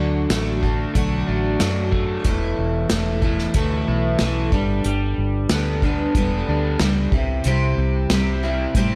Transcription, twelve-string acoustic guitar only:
0.00 0.31 D3 medium
0.00 0.31 F#3 medium
0.00 0.33 A3 medium
0.00 0.31 D4 medium
0.00 0.32 F#4 medium
0.32 0.64 F#3 medium
0.32 0.64 A3 medium
0.32 0.64 D4 medium
0.32 0.62 F#4 medium
0.63 0.95 A3 soft
0.63 0.95 D4 soft
0.63 0.96 F#4 soft
0.95 1.61 D3 medium
0.95 1.60 F#3 medium
0.95 1.61 A3 medium
0.95 1.61 D4 medium
0.95 1.61 F#4 medium
1.61 2.25 F#3 medium
1.61 2.26 A3 medium
1.61 2.26 D4 medium
1.61 2.25 F#4 medium
2.24 2.90 E2 medium
2.24 2.90 B2 medium
2.24 2.89 E3 medium
2.24 2.90 A3 medium
2.24 2.91 E4 medium
2.24 2.92 A4 medium
2.90 3.23 E3 medium
2.90 3.22 A3 medium
2.90 3.22 E4 medium
2.90 3.21 A4 medium
3.22 3.54 E3 soft
3.22 3.54 A3 soft
3.22 3.55 E4 soft
3.22 3.54 A4 medium
3.54 4.20 E2 medium
3.54 4.20 B2 medium
3.54 4.18 E3 medium
3.54 4.20 A3 medium
3.54 4.21 E4 medium
3.54 4.21 A4 medium
4.20 4.53 E3 medium
4.20 4.53 A3 medium
4.20 4.52 E4 medium
4.20 4.51 A4 medium
4.52 5.51 G3 medium
4.52 5.51 B3 medium
4.52 5.50 D4 medium
4.52 5.50 A4 medium
5.51 5.83 G3 medium
5.51 5.84 B3 medium
5.51 5.83 D4 medium
5.51 5.82 A4 medium
5.83 6.16 B3 medium
5.83 6.16 D4 soft
5.83 6.16 A4 medium
6.16 6.80 G3 medium
6.16 6.80 B3 medium
6.16 6.81 D4 medium
6.16 6.82 A4 medium
6.81 7.13 G3 medium
6.81 7.14 B3 medium
6.81 7.14 D4 medium
6.81 7.13 A4 medium
7.13 7.46 C4 soft
7.13 7.46 E4 soft
7.13 7.46 G4 medium
7.45 8.10 C3 medium
7.45 8.10 G3 medium
7.45 8.11 C4 medium
7.45 8.11 E4 medium
7.45 8.12 G4 medium
8.11 8.43 G3 medium
8.11 8.44 C4 medium
8.11 8.43 E4 medium
8.11 8.42 G4 medium
8.43 8.76 C4 medium
8.43 8.76 E4 soft
8.43 8.76 G4 medium
8.76 8.95 C3 medium
8.76 8.95 G3 medium
8.76 8.95 C4 medium
8.76 8.95 E4 medium
8.76 8.95 G4 medium

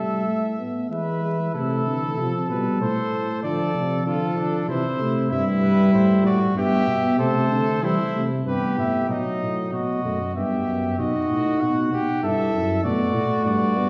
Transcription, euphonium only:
0.00 0.25 G3 soft
0.26 0.58 A3 medium
0.58 0.90 B3 soft
0.91 1.22 G#3 medium
1.24 1.38 G#3 soft
1.56 1.85 A3 medium
1.88 2.19 E3 medium
2.19 2.50 F3 medium
2.51 2.83 G3 medium
2.82 3.43 A3 medium
3.44 4.05 F3 medium
4.07 4.68 F3 medium
4.70 4.83 E3 medium
5.01 5.31 A3 medium
5.32 6.54 G3 medium
6.56 7.18 B3 medium
7.19 7.82 A3 medium
7.83 7.97 G3 medium
8.15 8.29 A3 medium
8.46 9.08 B3 medium
9.09 10.00 F#3 medium
10.04 10.18 A3 medium
10.36 10.98 B3 medium
10.99 12.21 D#4 medium
12.23 12.86 E4 medium
12.84 13.78 A3 medium
13.77 13.89 B3 medium

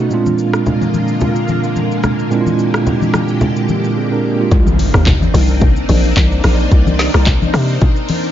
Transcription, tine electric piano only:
0.00 0.11 B2 medium
0.00 0.11 A3 medium
0.00 0.11 C#4 medium
0.00 0.12 D#4 medium
0.00 0.12 F#4 medium
0.10 2.26 A#2 medium
0.10 2.27 G#3 medium
0.10 2.27 C4 medium
0.10 2.28 D4 medium
0.14 2.29 F4 medium
2.30 4.47 A#2 medium
2.30 3.93 G#3 medium
2.30 3.93 C4 medium
2.30 3.94 D4 medium
2.34 2.40 E4 medium
2.41 3.98 F4 medium
3.97 4.11 C4 medium
3.97 4.11 G#4 medium
4.12 4.24 D4 medium
4.12 4.24 A#4 medium
4.25 4.39 A#3 medium
4.25 4.39 G4 medium
4.40 4.66 G#3 medium
4.40 4.66 F4 medium

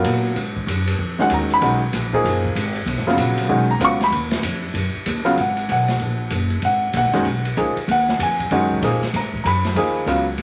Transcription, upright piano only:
0.00 0.34 F#3 medium
0.00 0.34 B3 medium
0.00 0.34 F4 medium
0.00 0.34 A#4 medium
1.19 1.60 D#3 medium
1.19 1.60 G#3 medium
1.19 1.60 C#4 medium
1.19 1.60 F#4 medium
1.19 1.32 F#5 medium
1.34 1.51 A#5 medium
1.54 1.63 B5 loud
1.62 1.80 D#3 medium
1.62 1.80 G#3 medium
1.62 1.80 C#4 medium
1.62 1.80 F#4 medium
2.13 2.54 F3 medium
2.13 2.54 A#3 medium
2.13 2.54 D#4 medium
2.13 2.54 G#4 medium
3.07 3.48 C#3 medium
3.07 3.48 F#3 medium
3.07 3.48 B3 medium
3.07 3.48 F4 medium
3.49 3.67 D#3 medium
3.49 3.67 G#3 medium
3.49 3.68 C#4 medium
3.49 3.68 F#4 medium
3.71 3.82 A#5 medium
3.80 3.99 C#3 medium
3.80 3.99 F#3 medium
3.80 3.99 B3 medium
3.80 3.99 F4 medium
3.85 4.02 C#6 medium
4.04 4.10 B5 loud
5.25 5.36 C#3 medium
5.25 5.36 F#3 medium
5.25 5.36 B3 medium
5.25 5.36 F4 medium
5.41 5.69 F#5 medium
5.72 6.18 F#5 medium
6.65 6.93 F#5 medium
6.97 7.43 F#5 medium
7.13 7.24 D#3 medium
7.13 7.24 G#3 medium
7.13 7.24 C#4 medium
7.13 7.25 F#4 medium
7.57 7.75 F3 medium
7.57 7.75 A#3 medium
7.57 7.75 D#4 medium
7.57 7.75 G#4 medium
7.91 8.19 F#5 medium
8.23 8.69 G#5 medium
8.52 8.82 D#3 medium
8.52 8.82 G#3 medium
8.52 8.82 C#4 medium
8.52 8.82 F#4 medium
8.83 9.01 F3 medium
8.83 9.01 A#3 medium
8.83 9.01 D#4 medium
8.83 9.01 G#4 medium
9.16 9.42 A#5 medium
9.44 9.46 A#5 medium
9.44 9.94 B5 medium
9.76 10.06 F3 medium
9.76 10.06 A#3 medium
9.76 10.07 D#4 medium
9.76 10.07 G#4 medium
10.07 10.25 C#3 medium
10.07 10.25 F#3 medium
10.07 10.25 B3 medium
10.07 10.25 F4 medium

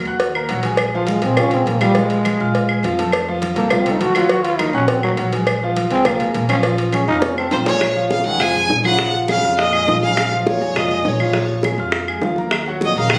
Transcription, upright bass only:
0.05 0.46 D#2 loud
0.50 1.18 A#1 medium
1.23 1.64 A#2 loud
1.66 2.34 A#2 medium
2.40 2.81 A#2 medium
2.83 3.51 F2 loud
3.56 3.97 C2 loud
4.00 4.68 D#2 medium
4.73 5.14 A#1 loud
5.18 5.85 A#1 medium
5.91 6.32 C#2 loud
6.35 7.03 A#1 loud
7.08 7.49 F1 loud
7.52 8.20 A#1 medium
8.26 8.67 F2 medium
8.69 9.37 A#1 medium
9.43 9.84 F2 loud
9.87 10.55 A#1 medium
10.61 11.02 F2 loud
11.05 11.73 A#1 medium
11.78 12.19 F2 medium
12.22 12.90 D#2 medium
12.96 13.19 A#1 medium

